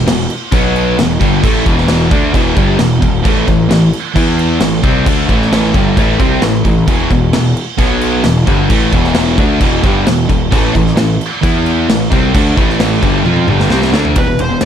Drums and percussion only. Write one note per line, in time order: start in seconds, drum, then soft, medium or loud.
0.08 snare loud
0.08 crash loud
0.30 crash medium
0.52 kick loud
0.52 crash medium
0.76 crash medium
0.99 snare loud
0.99 crash medium
1.21 kick loud
1.21 crash medium
1.44 kick loud
1.44 crash medium
1.66 kick loud
1.66 crash medium
1.78 snare soft
1.88 snare loud
1.88 crash medium
2.11 kick loud
2.11 crash medium
2.34 kick loud
2.34 crash medium
2.57 kick loud
2.57 crash medium
2.79 snare loud
2.79 crash medium
3.02 kick loud
3.02 crash medium
3.25 kick loud
3.25 crash medium
3.48 kick medium
3.48 crash medium
3.71 snare loud
3.71 crash medium
3.93 crash medium
4.16 kick loud
4.16 crash medium
4.39 crash medium
4.61 snare loud
4.61 crash medium
4.84 kick loud
4.84 crash medium
5.06 kick loud
5.06 crash loud
5.29 kick loud
5.29 crash medium
5.42 snare soft
5.53 snare loud
5.53 crash medium
5.74 kick loud
5.74 crash medium
5.97 kick loud
5.97 crash medium
6.20 kick loud
6.20 crash medium
6.42 snare loud
6.42 crash medium
6.65 kick medium
6.65 crash medium
6.88 kick loud
6.88 crash medium
7.11 kick medium
7.11 crash medium
7.33 snare loud
7.33 crash medium
7.57 crash medium
7.78 kick loud
7.78 crash medium
8.01 crash medium
8.24 snare loud
8.24 crash medium
8.47 kick loud
8.47 crash medium
8.70 kick loud
8.70 crash medium
8.93 kick loud
8.93 crash medium
9.04 snare soft
9.15 snare loud
9.15 crash medium
9.38 kick loud
9.38 crash medium
9.61 kick loud
9.61 crash medium
9.84 kick loud
9.84 crash medium
10.07 snare loud
10.07 crash medium
10.29 kick medium
10.29 crash medium
10.52 kick loud
10.52 crash medium
10.75 kick medium
10.75 crash medium
10.86 snare soft
10.97 snare loud
10.97 crash medium
11.21 crash medium
11.43 kick loud
11.43 crash medium
11.66 crash medium
11.90 snare loud
11.90 crash medium
12.12 kick loud
12.12 crash medium
12.35 kick loud
12.35 crash loud
12.57 kick loud
12.57 crash medium
12.70 snare soft
12.80 snare loud
12.80 crash medium
13.03 kick loud
13.03 crash medium
13.26 high tom medium
13.36 high tom medium
13.48 mid tom medium
13.60 snare medium
13.70 snare medium
13.82 snare medium
13.94 snare loud
14.05 floor tom medium
14.16 kick loud
14.16 ride loud
14.39 ride medium
14.61 snare loud
14.61 ride medium